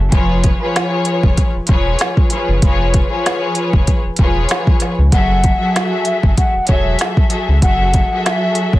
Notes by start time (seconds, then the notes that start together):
0.00 F#1
0.11 F1 F3 F4 G#4 B4 C#5, kick, closed hi-hat
0.44 kick, closed hi-hat
0.61 F3 F4 G#4 B4 C#5
0.76 snare, closed hi-hat
1.05 closed hi-hat
1.23 F1, kick
1.37 kick, closed hi-hat
1.55 E1
1.67 E1 F3 F4 G#4 B4 C#5, kick, closed hi-hat
1.99 snare, closed hi-hat
2.17 kick
2.30 F3 F4 G#4, closed hi-hat
2.34 B4 C#5
2.49 F#1
2.62 F1 F3 F4 G#4 B4 C#5, kick, closed hi-hat
2.94 kick, closed hi-hat
3.10 F3 F4 G#4 B4 C#5
3.26 snare, closed hi-hat
3.55 closed hi-hat
3.73 F1, kick
3.87 kick, closed hi-hat
4.05 E1
4.17 E1 F3 F4 G#4 B4, kick, closed hi-hat
4.21 C#5
4.49 snare, closed hi-hat
4.67 kick
4.80 snare, closed hi-hat
4.98 C#2
5.12 F#1 F#3 F#4 G#4 A4 E5 F#5, kick, closed hi-hat
5.44 kick, closed hi-hat
5.58 F#3 F#4 G#4 A4 E5
5.76 snare, closed hi-hat
6.05 E5, closed hi-hat
6.23 F#1, kick
6.37 F#5, kick, closed hi-hat
6.55 E1
6.67 E1 F#3 F#4 G#4 A4 C#5 E5, kick, closed hi-hat
6.99 snare, closed hi-hat
7.17 kick
7.30 F#3 F#4 G#4 A4 E5, closed hi-hat
7.49 C#2
7.61 F#1 F#3 F#4 G#4 A4 E5 F#5, kick, closed hi-hat
7.93 kick, closed hi-hat
8.12 F#3 F#4 G#4 A4 E5
8.24 E5, snare, closed hi-hat
8.55 closed hi-hat
8.73 E1 C#5, kick